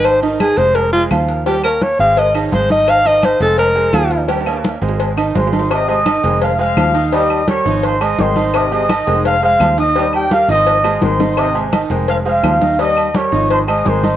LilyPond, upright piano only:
\new Staff \with { instrumentName = "Upright piano" } { \time 4/4 \key f \minor \tempo 4 = 170 <ees ees' ees''>8 <ees ees' ees''>4 <aes aes' c''>4 <aes aes' c''>8 <f f' f''>4 | <g g' g''>8 <bes bes' des''>4 <aes aes' c''>4 <ees ees' ees''>8 <aes aes' c''>8 <ees ees' ees''>8~ | <ees ees' ees''>8 <ees ees' ees''>4 <aes aes' c''>4 <aes aes' c''>8 <f f' f''>4 | <g g' g''>8 <bes bes' des''>4 <aes aes' c''>4 <ees ees' ees''>8 <aes aes' c''>8 <ees ees' ees''>8 |
r8 <aes aes' c''>8 <ees ees' ees''>8 <aes aes' c''>4 <aes aes' c''>4 <ees ees' ees''>8 | <ees ees' ees''>4 <g g' bes'>8 <ees ees' ees''>4 <aes aes' c''>8 <aes aes' c''>8 <ees ees' ees''>8~ | <ees ees' ees''>8 <aes aes' c''>8 <ees ees' ees''>8 <aes aes' c''>4 <aes aes' c''>4 <ees ees' ees''>8 | <ees ees' ees''>4 <g g' bes'>8 <ees ees' ees''>4 <aes aes' c''>8 <aes aes' c''>8 <ees ees' ees''>8~ |
<ees ees' ees''>8 <aes aes' c''>8 <ees ees' ees''>8 <aes aes' c''>4 <aes aes' c''>4 <ees ees' ees''>8 | <ees ees' ees''>4 <g g' bes'>8 <ees ees' ees''>4 <aes aes' c''>8 <aes aes' c''>8 <ees ees' ees''>8 | }